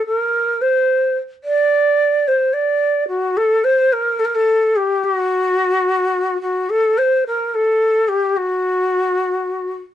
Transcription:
0.06 A#4
0.61 C5
1.44 D5
2.28 C5
2.53 D5
3.08 F#4
3.37 A4
3.64 C5
3.92 A#4
4.19 A4
4.25 A#4
4.35 A4
4.76 G4
5.04 G4
5.15 F#4
6.42 F#4
6.69 A4
6.98 C5
7.27 A#4
7.54 A4
8.08 G4
8.37 F#4

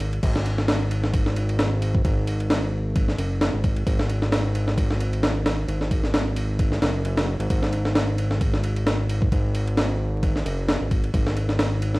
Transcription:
Already playing: G#1
0.00 ride
0.13 ride
0.23 G#1, kick, crash, ride
0.36 snare
0.46 ride
0.58 snare
0.68 snare, ride
0.91 ride
1.04 snare
1.14 kick, ride
1.26 snare
1.36 ride
1.49 ride
1.59 snare, ride
1.82 ride
1.95 kick
2.05 G#1, kick, ride
2.27 ride
2.40 ride
2.50 snare, ride
2.96 kick, ride
3.08 snare
3.18 F#1, ride
3.41 snare, ride
3.54 G#1
3.64 kick, ride
3.76 ride
3.87 G#1, kick, ride
3.99 snare
4.10 ride
4.22 snare
4.32 snare, ride
4.55 ride
4.68 snare
4.78 kick, ride
4.90 snare
5.00 ride
5.13 ride
5.23 snare, ride
5.46 snare, ride
5.68 G#1, ride
5.81 snare
5.91 kick, ride
6.04 snare
6.14 snare, ride
6.36 ride
6.59 kick, ride
6.72 snare
6.82 F#1, snare, ride
7.05 F#1, ride
7.17 snare, ride
7.40 G#1, ride
7.50 G#1, kick, ride
7.63 snare
7.73 ride
7.85 snare
7.95 snare, ride
8.18 ride
8.31 snare
8.41 kick, ride
8.54 snare
8.64 ride
8.76 ride
8.87 snare, ride
9.09 ride
9.22 kick
9.32 G#1, kick, ride
9.55 ride
9.68 ride
9.77 snare, ride
10.23 kick, ride
10.36 snare
10.45 F#1, ride
10.68 snare, ride
10.81 G#1
10.91 kick, ride
11.04 ride
11.14 G#1, kick, ride
11.27 snare
11.37 ride
11.49 snare
11.59 snare, ride
11.82 ride
11.95 snare

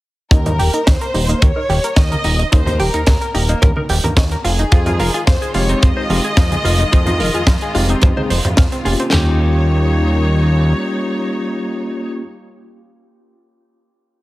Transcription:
0.31 D#2 C#4 D#4 A#4, kick, closed hi-hat
0.46 D#4, closed hi-hat, low conga
0.59 D#1 G4, open hi-hat
0.73 D#4 A#4, closed hi-hat
0.87 D#2 C5 C#5 D#5, kick, snare, closed hi-hat
1.01 A#4, closed hi-hat
1.14 D#1 D#4 G4, open hi-hat
1.29 A#3 D#4, closed hi-hat
1.42 D#2 C#4 A#4 C#5, kick, closed hi-hat
1.56 D#4 A#4
1.69 D#1 D#3 G4, open hi-hat
1.84 A#4, closed hi-hat
1.96 D#2 C#5 D#5, kick, snare, closed hi-hat
2.12 A#4, closed hi-hat, high conga
2.24 D#1 D#4 G4, open hi-hat
2.39 D#4, closed hi-hat
2.52 D#2 C#4 D#4 C5, kick, closed hi-hat
2.66 D#4, closed hi-hat, low conga
2.79 D#1 G4 A#4, open hi-hat
2.94 D#2 D#4 A#4, closed hi-hat
3.07 D#2 C#5 D#5, kick, snare, closed hi-hat
3.21 A#4, closed hi-hat
3.34 D#1 D#4 G4 A#4, open hi-hat
3.49 A#3 D#4, closed hi-hat
3.62 D#2 C#4 A#4, kick, closed hi-hat, low conga
3.76 D#4 A#4, high conga
3.89 D#1 D#3 G4, open hi-hat
4.04 D#2 A#4, closed hi-hat, low conga
4.17 D#2 C#5 D#5, kick, snare, closed hi-hat
4.31 A#4, closed hi-hat
4.44 F1 F4 G#4, open hi-hat
4.59 D#4, closed hi-hat
4.72 F2 D#3 G#3 C4 F4, kick, closed hi-hat
4.86 D#4 F4, closed hi-hat, low conga
4.99 F1 F4 A#4, open hi-hat
5.14 F4 G#4, closed hi-hat
5.27 F2 C5 F5, kick, snare, closed hi-hat
5.42 G#4, closed hi-hat
5.54 F1 G#3 C4 D#4 F4 G4 C#5, open hi-hat
5.69 C4 D#4, closed hi-hat
5.82 F2 C4 C5 D#5, kick, closed hi-hat
5.97 D#4 C5
6.09 F1 F3 G#3 C4 D#4 F4 G4, open hi-hat
6.24 G#4, closed hi-hat
6.37 F2 C5 F5, kick, snare, closed hi-hat
6.51 G#4, closed hi-hat, high conga
6.65 F1 F4, open hi-hat
6.79 D#4, closed hi-hat
6.92 F2 C4 F4, kick, closed hi-hat
7.06 D#4 F4, closed hi-hat, low conga
7.20 F1 F4 A#4, open hi-hat
7.34 F2 F4 G#4, closed hi-hat
7.47 F2 C5 F5, kick, snare, closed hi-hat
7.61 G#4, closed hi-hat
7.74 F1 G#3 C4 D#4 F4 G4, open hi-hat
7.89 C4 D#4, closed hi-hat
8.02 F2 C4 C5, kick, closed hi-hat, low conga
8.16 G#3 C4 D#4 G#4 C5, high conga
8.30 F1 F3 C5, open hi-hat
8.45 F2 C4, closed hi-hat, low conga
8.57 F2 C4 F5, kick, snare, closed hi-hat
8.72 C4, closed hi-hat
8.85 F1 A#3 C#4 F4 G4 G#4, open hi-hat
9.00 C4, closed hi-hat
9.11 D#2 G3 A#3 C#4 D#4 F4 G4 C#5, snare, floor tom, crash

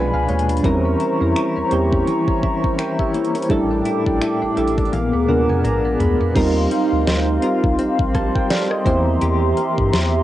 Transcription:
Already playing: B1 B2 F3 G#3 B3 D4 F4 B4 G#5 B5
0.14 C#2 D4 F5
0.29 D#2 G#3 C#5, closed hi-hat
0.39 closed hi-hat
0.49 D4, closed hi-hat
0.57 closed hi-hat
0.63 E2 E3 G3 C4 C#4 E4 A#4 C5 A#5 C#6, kick, closed hi-hat
0.85 C#4
1.00 E4, closed hi-hat
1.20 F2 G3 C4 C#4 E4 A#4
1.36 E4, finger snap, closed hi-hat
1.56 E2 C#4
1.71 E2 G3 A#3 C4 C#4 E4 G4, closed hi-hat
1.92 C#4, kick
2.07 E3, closed hi-hat
2.28 C#4, kick
2.43 E4, kick
2.64 C#4, kick
2.78 E4 A#4 G5, finger snap, closed hi-hat
2.99 C#4 G4 E5, kick
3.14 A#3 E4 C#5, closed hi-hat
3.25 closed hi-hat
3.35 C#4 A#4, closed hi-hat
3.42 closed hi-hat
3.49 A1 A2 G3 A3 D4 E4 A4 G5 D6, kick, closed hi-hat
3.71 D4
3.85 E4, closed hi-hat
4.07 A#1 D4, kick
4.21 E4, finger snap, closed hi-hat
4.42 A1 D4
4.56 A1 G3 A3 D4 E4 A4 E5, closed hi-hat
4.68 closed hi-hat
4.78 D4, kick, closed hi-hat
4.85 closed hi-hat
4.93 A#1 A#2 B3 G#4 A#4 F5, closed hi-hat, high tom
5.13 D2 B3
5.28 D#2 G#3 B3 D4 F4 A#4 F#5, mid tom
5.49 F2 B3 G#5, mid tom
5.64 A#1 D4 A#5, closed hi-hat, mid tom
5.85 B3
6.00 D2 G#3 B5, closed hi-hat, floor tom
6.21 B3, floor tom
6.35 D#2 G3 C4 D#4 F4 G4 A#4 F5 C6, kick, closed hi-hat, crash
6.71 G3, closed hi-hat
6.93 D2
7.07 D2 C4 D#5, snare, closed hi-hat
7.42 G3 C4 D#4 F4 A#4, closed hi-hat
7.64 C2, kick
7.79 A#1 C4, closed hi-hat
7.99 A#1, kick
8.15 G3 C5 A5, kick, cross-stick, closed hi-hat
8.35 A#4 G5, kick
8.50 C4 A4 D5 F5, snare, closed hi-hat
8.71 G4 D#5, cross-stick
8.85 E2 E3 A#3 C4 E4 G4 C5 E5 A#5, kick, closed hi-hat
9.21 E2 E3 G4, closed hi-hat
9.57 A#3, closed hi-hat
9.78 G2, kick
9.93 E2 C4, snare, closed hi-hat

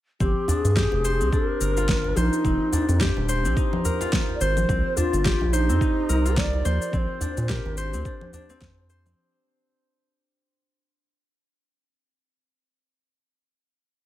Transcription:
0.20 G1 C4 G4, kick, low conga, cabasa
0.48 D4 G#4, djembe bass, cabasa
0.65 G2, djembe slap, cabasa
0.76 G4, kick, snare, cabasa
0.92 F1, djembe tone
1.05 C5, cabasa
1.21 C2 C4, cabasa
1.32 D4 A#4, kick, djembe tone, cabasa
1.61 G1 A#4, cabasa
1.77 F4, djembe slap, cabasa
1.89 kick, snare, cabasa
2.04 djembe tone
2.16 A#1 D#4 C5, djembe slap, low conga, cabasa
2.33 cabasa
2.45 F1 C4, kick, low conga, cabasa
2.73 D4, djembe bass, cabasa
2.89 F2, djembe slap, cabasa
3.01 G4, kick, snare, cabasa
3.17 D#1, djembe tone
3.29 C5, cabasa
3.45 A#1 C4, cabasa
3.57 D#4, kick, cabasa
3.73 djembe tone, low conga
3.85 A#4, djembe bass, cabasa
4.01 F4, djembe slap, djembe tone, cabasa
4.13 kick, snare, cabasa
4.29 djembe tone
4.35 D5
4.41 G#1 C5, cabasa
4.57 low conga, cabasa
4.69 C2 C4, kick, low conga, cabasa
4.97 D4 F4, djembe bass, cabasa
5.13 G1, djembe slap, cabasa
5.25 G4, kick, snare, cabasa
5.41 A#1, djembe tone
5.53 D#4 C5, cabasa
5.69 F2 C4, cabasa
5.81 D#4, kick, djembe tone, cabasa
6.09 C2 A#4, cabasa
6.25 F4, djembe slap, cabasa
6.37 D5, kick, snare, cabasa
6.53 djembe tone
6.65 D#2 C5, djembe slap, low conga, cabasa
6.82 cabasa
6.93 A#1 C4 D5, kick, low conga, cabasa
6.98 C5
7.21 D4, djembe bass, cabasa
7.37 A#2, djembe slap, cabasa
7.49 G4 A#4, kick, snare, cabasa
7.65 G#1, djembe tone
7.77 C5, cabasa
7.93 D2 C4, cabasa
8.05 D4, kick, cabasa
8.21 djembe tone, low conga
8.33 D4, djembe bass, cabasa
8.49 C4, djembe slap, djembe tone, cabasa
8.61 F2, kick, snare, cabasa
8.78 djembe tone
8.90 C5, cabasa
9.06 C4, low conga, cabasa

